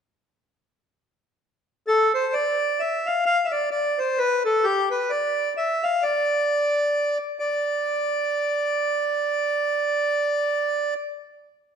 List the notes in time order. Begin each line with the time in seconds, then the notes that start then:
1.88 A4
2.14 C5
2.33 D5
2.80 E5
3.06 F5
3.26 F5
3.45 E5
3.52 D5
3.71 D5
3.99 C5
4.18 B4
4.45 A4
4.64 G4
4.91 B4
5.10 D5
5.57 E5
5.83 F5
6.03 D5
7.39 D5